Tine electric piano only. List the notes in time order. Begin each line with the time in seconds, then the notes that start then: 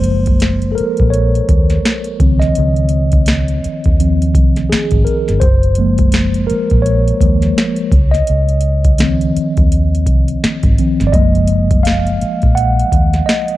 Already playing: F3 G#3 A#3 C5
0.72 A4 A#4
1.10 C#5
2.21 D#3 F3 C4
2.40 D#5
3.99 D#3 F3 C4
4.70 G#4
5.05 A#4
5.40 C5
5.78 F3 G#3 A#3
6.47 A#4
6.82 C#5
7.21 F3 G#3 A#3
8.11 D#5
8.99 D#3 F3 C4
10.78 D#3 F3 C4
11.07 D5
11.12 F3 G#3 A#3 D#5
11.83 F5
12.55 F#5
13.26 D#5